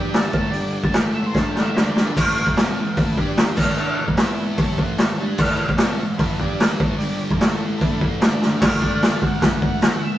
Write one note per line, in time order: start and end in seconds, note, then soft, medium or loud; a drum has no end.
0.00 0.34 G3 loud
0.00 0.24 D4 medium
0.00 0.35 D4 loud
0.00 0.24 G4 medium
0.00 0.35 G4 loud
0.00 0.24 D5 medium
0.00 0.15 G5 loud
0.14 0.35 A5 medium
0.14 snare loud
0.14 open hi-hat medium
0.30 0.54 A2 loud
0.30 0.49 E4 medium
0.30 0.49 A4 medium
0.30 0.49 C#5 medium
0.30 kick loud
0.35 0.54 E3 medium
0.35 0.55 A3 loud
0.35 0.55 A5 loud
0.51 0.94 G2 medium
0.51 0.94 D3 loud
0.51 0.78 D4 loud
0.51 0.78 G4 medium
0.51 0.79 D5 loud
0.51 open hi-hat medium
0.55 0.95 G3 loud
0.84 0.96 A5 loud
0.84 kick medium
0.92 1.34 A2 loud
0.92 1.35 E3 medium
0.92 1.35 A3 medium
0.92 1.06 E4 medium
0.92 1.06 A4 medium
0.92 1.07 C#5 medium
0.92 snare loud
0.92 open hi-hat medium
0.99 1.10 G5 medium
1.12 1.26 E4 medium
1.12 1.27 A4 medium
1.12 1.26 C#5 medium
1.12 1.24 E5 medium
1.26 1.37 C5 loud
1.32 1.59 E4 medium
1.32 1.59 A4 medium
1.32 1.60 C#5 medium
1.32 kick loud
1.32 snare medium
1.36 1.56 D3 loud
1.36 1.56 A3 loud
1.36 1.56 D4 loud
1.36 1.52 A5 medium
1.52 1.64 G5 medium
1.52 snare medium
1.56 1.76 A2 medium
1.56 1.76 E3 loud
1.56 1.76 A3 loud
1.63 1.78 E5 medium
1.75 2.16 D3 medium
1.75 2.17 A3 medium
1.75 2.01 D4 medium
1.75 2.17 D4 loud
1.75 2.01 A4 medium
1.75 2.01 D5 medium
1.75 1.88 D5 medium
1.75 snare loud
1.89 2.15 D5 medium
1.96 snare medium
2.17 2.36 A2 medium
2.17 2.36 E3 loud
2.17 2.37 A3 loud
2.17 2.42 E4 medium
2.17 2.43 A4 medium
2.17 2.42 C#5 medium
2.17 kick loud
2.17 crash loud
2.37 2.53 A2 medium
2.37 2.53 E3 medium
2.47 kick medium
2.57 2.76 C3 medium
2.57 2.77 G3 loud
2.57 2.77 C4 loud
2.57 2.82 E4 medium
2.57 2.83 A4 medium
2.57 2.83 C#5 medium
2.57 snare loud
2.57 open hi-hat medium
2.78 2.94 A2 medium
2.78 2.94 E3 medium
2.97 3.17 A2 loud
2.97 3.17 E3 medium
2.97 3.17 A3 loud
2.97 3.19 E4 medium
2.97 3.19 A4 medium
2.97 3.18 B4 loud
2.97 kick loud
2.97 open hi-hat medium
3.18 3.57 G3 loud
3.18 3.50 D4 medium
3.18 3.58 D4 loud
3.18 3.50 G4 medium
3.18 3.58 G4 loud
3.18 3.51 D5 loud
3.18 kick medium
3.37 snare loud
3.37 open hi-hat medium
3.56 3.76 A2 medium
3.56 3.77 E3 loud
3.56 3.77 A3 loud
3.56 4.07 E4 loud
3.56 kick loud
3.56 crash loud
3.60 4.07 A4 medium
3.60 4.08 C#5 loud
3.77 3.97 D3 loud
3.77 3.97 A3 loud
3.77 3.98 D4 loud
3.98 4.14 A2 medium
3.98 4.14 E3 medium
4.08 kick medium
4.17 4.58 E3 medium
4.17 4.58 B3 loud
4.17 4.44 E4 medium
4.17 4.59 E4 loud
4.17 4.43 B4 medium
4.17 4.44 E5 loud
4.17 snare loud
4.17 open hi-hat medium
4.56 4.78 C3 loud
4.56 4.78 G3 loud
4.56 4.83 E4 loud
4.56 4.83 A4 loud
4.56 4.83 C#5 loud
4.56 kick loud
4.56 open hi-hat medium
4.61 4.79 C4 loud
4.78 4.98 A2 medium
4.78 4.99 E3 loud
4.78 4.99 A3 loud
4.78 kick medium
4.98 5.15 A2 medium
4.98 5.15 E3 medium
4.98 5.24 E4 medium
4.98 5.25 A4 medium
4.98 5.25 C#5 loud
4.98 snare loud
4.98 open hi-hat medium
5.18 5.38 G3 medium
5.18 5.39 D4 loud
5.18 5.39 G4 medium
5.38 5.57 A2 loud
5.38 5.58 E3 loud
5.38 5.59 A3 loud
5.38 5.65 E4 loud
5.38 5.65 A4 medium
5.38 5.65 B4 loud
5.38 kick loud
5.38 crash loud
5.58 5.75 A2 medium
5.58 5.75 E3 medium
5.69 kick medium
5.78 5.99 C3 medium
5.78 5.99 G3 loud
5.78 5.99 C4 loud
5.78 6.04 E4 medium
5.78 6.05 A4 medium
5.78 6.05 C#5 loud
5.78 snare loud
5.78 open hi-hat medium
6.00 6.16 A2 medium
6.00 6.16 E3 medium
6.18 6.39 A2 loud
6.18 6.40 E3 loud
6.18 6.40 A3 loud
6.18 6.39 E4 medium
6.18 6.40 A4 medium
6.18 6.39 B4 loud
6.18 kick loud
6.18 open hi-hat medium
6.40 6.80 G3 medium
6.40 6.73 D4 medium
6.40 6.80 D4 loud
6.40 6.73 G4 medium
6.40 6.81 G4 loud
6.40 6.73 D5 loud
6.40 kick medium
6.60 snare loud
6.60 open hi-hat medium
6.77 6.95 E4 loud
6.77 6.96 A4 medium
6.77 6.96 C#5 loud
6.77 kick loud
6.82 7.01 A2 medium
6.82 7.01 E3 medium
6.82 7.01 A3 loud
6.98 7.40 G2 medium
6.98 7.41 D3 loud
6.98 7.25 D4 medium
6.98 7.25 G4 medium
6.98 7.25 D5 loud
6.98 open hi-hat medium
7.03 7.41 G3 loud
7.31 kick medium
7.37 7.64 E4 medium
7.37 7.64 A4 medium
7.37 7.65 C#5 loud
7.37 open hi-hat medium
7.41 7.81 A2 medium
7.41 7.81 E3 loud
7.41 7.81 A3 loud
7.41 snare loud
7.77 8.04 E4 loud
7.77 8.05 A4 medium
7.77 8.05 B4 loud
7.77 kick loud
7.77 open hi-hat medium
7.82 8.01 D3 loud
7.82 8.01 A3 loud
7.82 8.02 D4 loud
8.01 8.21 A2 medium
8.01 8.21 E3 medium
8.01 8.21 A3 loud
8.01 kick medium
8.19 8.60 D3 medium
8.19 8.61 A3 loud
8.19 8.46 D4 medium
8.19 8.62 D4 loud
8.19 8.46 A4 medium
8.19 8.46 D5 medium
8.19 snare loud
8.19 open hi-hat medium
8.42 snare medium
8.61 10.18 D3 medium
8.61 10.18 A3 loud
8.61 8.80 C#5 loud
8.61 kick loud
8.61 snare loud
8.61 crash loud
8.65 10.18 D4 loud
8.80 9.22 D5 loud
8.80 kick medium
9.02 snare loud
9.02 open hi-hat medium
9.21 9.59 F#5 loud
9.21 kick loud
9.42 kick loud
9.42 snare loud
9.42 open hi-hat medium
9.61 10.03 F#5 loud
9.61 kick loud
9.82 snare loud
9.82 open hi-hat medium
10.03 10.18 E5 loud